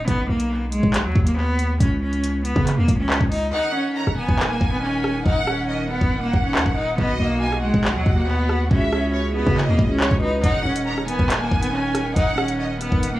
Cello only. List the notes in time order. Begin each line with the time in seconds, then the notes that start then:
0.08 B3
0.30 A#3
0.73 G#3
1.05 F#3
1.27 A#3
1.37 B3
1.80 C#4
2.02 C#4
2.45 B3
2.77 A#3
2.99 C#4
3.31 D#4
3.53 D#4
3.75 C#4
4.18 B3
4.50 A#3
4.72 B3
4.83 C#4
5.25 D#4
5.47 C#4
5.90 B3
6.23 A#3
6.44 C#4
6.77 D#4
6.98 B3
7.20 A#3
7.63 G#3
7.96 F#3
8.17 A#3
8.28 B3
8.71 C#4
8.93 C#4
9.36 B3
9.68 A#3
9.89 C#4
10.22 D#4
10.43 D#4
10.65 C#4
11.08 B3
11.41 A#3
11.62 B3
11.73 C#4
12.16 D#4
12.38 C#4
12.81 B3
13.14 A#3